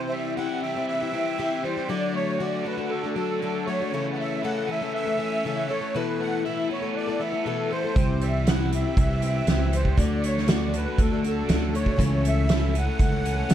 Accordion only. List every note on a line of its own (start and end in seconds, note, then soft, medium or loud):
0.00 0.13 C5 loud
0.09 0.34 E5 loud
0.37 0.61 F#5 medium
0.63 0.86 E5 medium
0.88 1.66 E5 loud
1.64 1.88 C5 medium
1.88 2.15 D5 medium
2.15 2.41 C#5 loud
2.41 2.67 D5 medium
2.67 2.82 B4 medium
2.83 2.90 B4 medium
2.90 3.15 A4 medium
3.17 3.40 A4 medium
3.42 3.65 A4 medium
3.66 4.08 C#5 loud
4.12 4.18 F#5 medium
4.19 4.42 E5 medium
4.44 4.69 F#5 loud
4.71 4.93 E5 medium
4.95 5.72 E5 loud
5.69 5.95 C#5 medium
5.95 6.21 B4 medium
6.21 6.44 F#5 loud
6.45 6.68 E5 medium
6.71 6.94 C#5 medium
6.97 7.22 D5 medium
7.19 7.46 E5 medium
7.45 7.71 A4 medium
7.72 8.23 C5 medium
8.23 8.48 E5 medium
8.48 8.71 F#5 medium
8.75 8.97 E5 medium
8.99 9.76 E5 loud
9.74 9.99 C5 medium
10.00 10.25 D5 medium
10.25 10.50 C#5 medium
10.52 10.76 D5 medium
10.77 11.01 B4 medium
10.98 11.24 A4 medium
11.27 11.51 A4 medium
11.53 11.75 A4 medium
11.75 12.27 C#5 loud
12.28 12.78 E5 loud
12.78 13.54 F#5 loud